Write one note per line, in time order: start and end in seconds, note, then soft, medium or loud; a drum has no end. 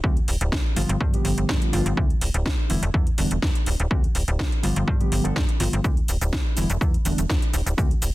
0.04 0.20 D2 loud
0.04 0.14 D3 medium
0.04 0.15 F#3 medium
0.04 0.15 A3 medium
0.04 0.15 C4 medium
0.04 0.15 F#4 loud
0.04 kick loud
0.17 closed hi-hat soft
0.28 0.37 D1 medium
0.28 open hi-hat loud
0.41 0.54 D1 loud
0.41 closed hi-hat medium
0.52 0.61 D2 medium
0.52 kick loud
0.52 snare loud
0.76 0.85 G1 medium
0.76 1.10 D3 medium
0.76 1.10 F3 medium
0.76 1.10 G3 medium
0.76 1.10 B3 medium
0.76 1.11 F4 loud
0.76 open hi-hat loud
0.89 0.97 G1 loud
0.89 closed hi-hat medium
1.01 1.17 G2 medium
1.01 kick loud
1.13 1.46 D3 medium
1.13 1.46 F3 medium
1.13 1.46 G3 medium
1.13 1.46 B3 medium
1.13 1.47 G4 medium
1.13 closed hi-hat medium
1.25 1.33 G1 medium
1.25 open hi-hat loud
1.38 1.45 G1 medium
1.38 closed hi-hat medium
1.49 1.57 G2 medium
1.49 1.70 D3 medium
1.49 1.70 F3 medium
1.49 1.71 B3 medium
1.49 1.71 F4 medium
1.49 kick loud
1.49 snare loud
1.62 closed hi-hat medium
1.73 1.82 G1 loud
1.73 1.94 D3 medium
1.73 1.94 F3 medium
1.73 1.95 G3 medium
1.73 1.95 B3 medium
1.73 1.95 F4 loud
1.73 open hi-hat loud
1.86 1.93 G1 loud
1.86 closed hi-hat medium
1.96 2.14 D2 loud
1.96 2.08 D3 medium
1.96 2.08 F3 medium
1.96 2.08 A3 medium
1.96 2.08 C4 medium
1.96 2.08 E4 medium
1.96 kick loud
2.10 closed hi-hat soft
2.21 2.30 D1 medium
2.21 open hi-hat loud
2.34 2.47 D1 loud
2.34 closed hi-hat medium
2.46 2.54 D2 medium
2.46 kick loud
2.46 snare loud
2.69 2.78 E1 medium
2.69 2.81 D3 medium
2.69 2.80 E3 medium
2.69 2.81 G3 medium
2.69 2.81 B3 medium
2.69 2.81 E4 medium
2.69 open hi-hat loud
2.83 2.90 E1 loud
2.83 closed hi-hat medium
2.94 3.11 E2 loud
2.94 3.05 D3 medium
2.94 3.05 E3 medium
2.94 3.05 G3 medium
2.94 3.05 B3 medium
2.94 3.05 E4 medium
2.94 kick loud
3.07 closed hi-hat soft
3.18 3.27 E1 medium
3.18 3.35 D3 medium
3.18 3.35 E3 medium
3.18 3.35 G3 medium
3.18 3.35 B3 medium
3.18 3.35 D4 medium
3.18 open hi-hat loud
3.31 3.39 E1 medium
3.31 closed hi-hat medium
3.42 3.51 E2 medium
3.42 kick loud
3.42 snare loud
3.55 closed hi-hat soft
3.66 3.75 D1 loud
3.66 open hi-hat loud
3.80 3.87 D1 loud
3.80 closed hi-hat medium
3.90 4.07 D2 loud
3.90 4.01 D3 medium
3.90 4.01 F#3 medium
3.90 4.01 A3 medium
3.90 4.02 C4 medium
3.90 4.02 F#4 loud
3.90 kick loud
4.04 closed hi-hat soft
4.15 4.24 D1 medium
4.15 open hi-hat loud
4.28 4.41 D1 loud
4.28 closed hi-hat medium
4.39 4.48 D2 medium
4.39 kick loud
4.39 snare loud
4.52 closed hi-hat soft
4.63 4.72 G1 medium
4.63 4.97 D3 loud
4.63 4.97 F3 medium
4.63 4.97 G3 medium
4.63 4.97 B3 medium
4.63 4.98 F4 loud
4.63 open hi-hat loud
4.76 4.84 G1 loud
4.76 closed hi-hat medium
4.88 5.04 G2 loud
4.88 kick loud
5.00 5.22 D3 medium
5.00 5.22 F3 medium
5.00 5.22 G3 medium
5.00 5.22 B3 medium
5.00 5.22 G4 medium
5.00 closed hi-hat soft
5.12 5.20 G1 medium
5.12 open hi-hat loud
5.24 5.32 G1 medium
5.24 5.34 D3 medium
5.24 5.34 F3 medium
5.24 5.34 G3 medium
5.24 5.34 B3 medium
5.24 5.34 A4 loud
5.24 closed hi-hat medium
5.36 5.44 G2 medium
5.36 kick loud
5.36 snare loud
5.49 closed hi-hat soft
5.59 5.69 G1 loud
5.59 5.81 D3 medium
5.59 5.81 F3 medium
5.59 5.81 G3 medium
5.59 5.82 B3 medium
5.59 5.82 F4 medium
5.59 open hi-hat loud
5.73 5.81 G1 loud
5.73 closed hi-hat medium
5.84 6.01 D2 loud
5.84 5.95 F3 medium
5.84 kick loud
5.84 shaker soft
5.97 closed hi-hat soft
6.08 6.17 D1 medium
6.08 open hi-hat loud
6.08 shaker medium
6.21 6.34 D1 loud
6.21 closed hi-hat medium
6.21 shaker soft
6.33 6.41 D2 medium
6.33 kick loud
6.33 snare loud
6.33 shaker soft
6.56 6.66 E1 medium
6.56 6.68 D3 medium
6.56 6.68 E3 medium
6.56 6.68 G3 medium
6.56 6.68 B3 medium
6.56 6.68 E4 medium
6.56 open hi-hat loud
6.56 shaker medium
6.70 6.77 E1 loud
6.70 closed hi-hat medium
6.70 shaker soft
6.81 6.98 E2 loud
6.81 6.92 D3 medium
6.81 6.92 E3 medium
6.81 6.92 G3 medium
6.81 6.92 B3 medium
6.81 6.92 E4 medium
6.81 kick loud
6.81 shaker soft
6.94 closed hi-hat soft
7.05 7.14 E1 medium
7.05 7.22 D3 medium
7.05 7.22 E3 medium
7.05 7.22 G3 medium
7.05 7.22 B3 medium
7.05 7.22 D4 medium
7.05 open hi-hat loud
7.05 shaker medium
7.18 7.26 E1 medium
7.18 closed hi-hat medium
7.18 shaker soft
7.30 7.38 E2 medium
7.30 kick loud
7.30 snare loud
7.30 shaker soft
7.42 closed hi-hat soft
7.54 7.62 D1 loud
7.54 open hi-hat loud
7.54 shaker medium
7.66 7.74 D1 loud
7.66 closed hi-hat medium
7.66 shaker soft
7.77 7.94 D2 loud
7.77 7.88 D3 medium
7.77 7.88 F#3 medium
7.77 7.89 A3 medium
7.77 7.89 C4 medium
7.77 7.89 F#4 loud
7.77 kick loud
7.77 shaker soft
7.91 closed hi-hat soft
8.02 8.11 D1 medium
8.02 open hi-hat loud
8.02 shaker medium